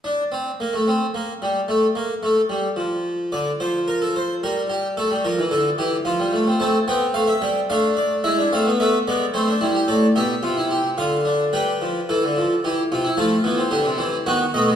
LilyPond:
<<
  \new Staff \with { instrumentName = "Harpsichord" } { \time 3/4 \key d \minor \tempo 4 = 110 << { d'8 c'8 bes16 a16 c'8 bes8 g8 | a8 bes8 a8 g8 f4 | r2. | r2. |
a''8 g''8 f''16 e''16 g''8 f''8 d''8 | e''8 f''8 e''8 d''8 c''4 | d''8 e''4. f''4 | g''2. |
a''2 fis''8 dis''8 | } \\ { r2. | r2. | d''8 c''8 bes'16 a'16 c''8 bes'8 g'8 | a'8 bes'8 a'8 g'8 f'4 |
a8 c'4. d'4 | e'16 d'16 c'16 b16 a8 b8 c'16 d'16 e'16 g'16 | a'8 g'8 f'16 e'16 g'8 f'8 d'8 | b'4 a'4 g'8 f'16 e'16 |
f'4 g'4 fis'4 | } >> }
  \new Staff \with { instrumentName = "Harpsichord" } { \clef bass \time 3/4 \key d \minor << { r2. | r2. | d8 f4. g4 | a16 g16 f16 e16 d8 e8 f16 g16 a16 c'16 |
c'8 b8 a8 g8 a4 | gis8 a8 b8 gis8 a8 g8 | r2. | r2. |
a8 b16 c'16 d'8 c'8 b8 a16 gis16 | } \\ { r2. | r2. | r2. | r2. |
r2. | r2. | a,8 b,8 c4 d4 | g8 f8 e16 d16 f8 e8 c8 |
f8 e8 d16 c16 e8 dis8 b,8 | } >> }
>>